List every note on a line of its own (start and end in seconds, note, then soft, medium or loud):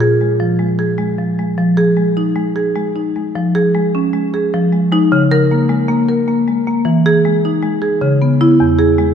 0.00 1.55 A#2 medium
0.00 0.32 G#4 medium
0.21 0.52 G#3 soft
0.40 0.71 F3 soft
0.59 0.91 G#3 soft
0.79 1.11 G#4 soft
0.98 1.30 G#3 soft
1.18 1.50 F3 soft
1.39 1.59 G#3 soft
1.58 3.31 F3 medium
1.77 2.09 G#4 medium
1.97 2.29 G#3 soft
2.17 2.48 D#4 soft
2.36 2.68 G#3 soft
2.56 2.88 G#4 soft
2.76 3.07 G#3 soft
2.96 3.27 D#4 soft
3.16 3.35 G#3 soft
3.35 4.49 F3 medium
3.55 3.86 G#4 medium
3.75 4.05 G#3 soft
3.95 4.25 C#4 soft
4.13 4.45 G#3 soft
4.34 4.53 G#4 medium
4.54 5.10 F3 medium
4.73 4.91 G#3 soft
4.92 5.09 G#3 soft
4.92 5.09 D#4 medium
5.12 6.82 C#3 medium
5.32 5.62 A#4 medium
5.51 5.81 A#3 medium
5.69 6.00 G#3 medium
5.88 6.19 A#3 medium
6.09 6.39 A#4 medium
6.28 6.59 A#3 medium
6.48 6.79 G#3 soft
6.67 6.86 A#3 soft
6.85 7.98 E3 medium
7.06 7.36 G#4 medium
7.25 7.56 G#3 medium
7.45 7.75 D#4 soft
7.62 7.94 G#3 soft
7.82 8.02 G#4 medium
8.01 8.58 C#3 medium
8.22 8.40 B3 soft
8.41 8.59 B3 soft
8.41 8.58 E4 medium
8.60 9.14 E2 medium
8.79 9.11 G#4 medium
8.98 9.14 G#3 soft